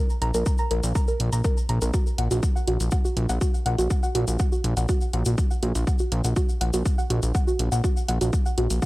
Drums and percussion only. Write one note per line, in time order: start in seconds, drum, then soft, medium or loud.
0.10 shaker soft
0.22 closed hi-hat medium
0.34 closed hi-hat soft
0.34 shaker medium
0.46 kick loud
0.46 closed hi-hat soft
0.46 shaker medium
0.58 shaker soft
0.71 closed hi-hat medium
0.83 closed hi-hat soft
0.83 shaker medium
0.95 kick loud
0.95 closed hi-hat soft
0.95 shaker medium
1.08 shaker soft
1.20 closed hi-hat medium
1.33 closed hi-hat soft
1.33 shaker medium
1.44 kick loud
1.44 closed hi-hat soft
1.44 shaker medium
1.57 shaker soft
1.69 closed hi-hat medium
1.81 closed hi-hat soft
1.81 shaker medium
1.94 kick loud
1.94 closed hi-hat soft
1.94 shaker medium
2.07 shaker soft
2.18 closed hi-hat medium
2.31 closed hi-hat soft
2.31 shaker medium
2.43 kick loud
2.43 closed hi-hat soft
2.43 shaker medium
2.56 shaker soft
2.68 closed hi-hat medium
2.80 closed hi-hat soft
2.80 shaker medium
2.91 kick loud
2.91 closed hi-hat soft
2.91 shaker medium
3.05 shaker soft
3.17 closed hi-hat medium
3.29 closed hi-hat soft
3.29 shaker medium
3.41 kick loud
3.41 closed hi-hat soft
3.41 shaker medium
3.54 shaker soft
3.66 closed hi-hat medium
3.78 closed hi-hat soft
3.78 shaker medium
3.90 kick loud
3.90 closed hi-hat soft
3.90 shaker medium
4.03 shaker soft
4.15 closed hi-hat medium
4.28 closed hi-hat soft
4.28 shaker medium
4.39 kick loud
4.39 closed hi-hat soft
4.39 shaker medium
4.52 shaker soft
4.64 closed hi-hat medium
4.77 closed hi-hat soft
4.77 shaker medium
4.89 kick loud
4.89 closed hi-hat soft
4.89 shaker medium
5.01 shaker soft
5.13 closed hi-hat medium
5.25 closed hi-hat soft
5.25 shaker medium
5.38 kick loud
5.38 closed hi-hat soft
5.38 shaker medium
5.51 shaker soft
5.63 closed hi-hat medium
5.75 closed hi-hat soft
5.75 shaker medium
5.87 kick loud
5.87 closed hi-hat soft
5.87 shaker medium
5.99 shaker soft
6.12 closed hi-hat medium
6.24 closed hi-hat soft
6.24 shaker medium
6.36 kick loud
6.36 closed hi-hat soft
6.36 shaker medium
6.49 shaker soft
6.61 closed hi-hat medium
6.73 closed hi-hat soft
6.73 shaker medium
6.85 kick loud
6.85 closed hi-hat soft
6.85 shaker medium
6.99 shaker soft
7.10 closed hi-hat medium
7.22 closed hi-hat soft
7.22 shaker medium
7.35 kick loud
7.35 closed hi-hat soft
7.35 shaker medium
7.48 shaker soft
7.59 closed hi-hat medium
7.72 closed hi-hat soft
7.72 shaker medium
7.84 kick loud
7.84 closed hi-hat soft
7.84 shaker medium
7.97 shaker soft
8.08 closed hi-hat medium
8.21 closed hi-hat soft
8.21 shaker medium
8.33 kick loud
8.33 closed hi-hat soft
8.33 shaker medium
8.46 shaker soft
8.58 closed hi-hat medium
8.70 closed hi-hat soft
8.70 shaker medium
8.82 kick loud
8.82 closed hi-hat soft
8.82 shaker medium